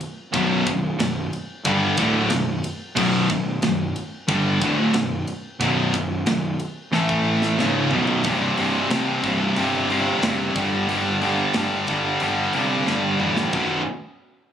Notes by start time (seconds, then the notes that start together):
0.01 ride
0.33 B0 B1 F#2 B2, kick, ride
0.66 B0 B1 F#2, kick, ride
0.99 B0 B1 F#2, snare, ride
1.33 ride
1.64 G1 G2 D3 G3, kick, ride
1.97 D1 D2 A2 D3, kick, ride
2.30 B0 B1 F#2, snare, ride
2.64 ride
2.96 B0 B1 F#2 B2, kick, crash
3.29 B0 B1 F#2, kick, ride
3.61 B0 B1 F#2, snare, ride
3.96 ride
4.28 G1 G2 D3 G3, kick, ride
4.62 D1 D2 A2 D3, kick, ride
4.94 B0 B1 F#2, snare, ride
5.27 ride
5.60 B0 B1 F#2 B2, kick, ride
5.93 B0 B1 F#2, kick, ride
6.26 B0 B1 F#2, snare, ride
6.60 ride
6.92 A1 A2 E3 A3, snare
7.09 kick
7.42 snare
7.59 C#1 C#2 G#2 C#3, snare
7.91 B0 B1 F#2 B2, floor tom
8.07 floor tom
8.24 C1 C2 G2 C3, kick, open hi-hat
8.58 C1 C2 G2 C3, open hi-hat
8.90 C2 G2 C3, snare, open hi-hat
9.23 C1 C2 G2 C3, kick, open hi-hat
9.56 G1 C2 G2 C3, open hi-hat
9.90 C2 G2 C3, open hi-hat
10.22 F#1 C2 G2 C3, snare, open hi-hat
10.56 G1 G2 D3 G3, kick, open hi-hat
10.88 G1 G2 D3 G3, open hi-hat
11.22 G2 D3 G3, open hi-hat
11.54 G1 G2 D3 G3, snare, open hi-hat
11.87 G1 G2 D3 G3, kick, open hi-hat
12.20 G1 G2 D3 G3, open hi-hat
12.53 C2 G2 D3 G3, open hi-hat
12.87 G1 G2 D3 G3, snare
13.20 A1 G2 D3 G3, mid tom
13.36 snare
13.53 B0 B1 F#2 B2, kick, crash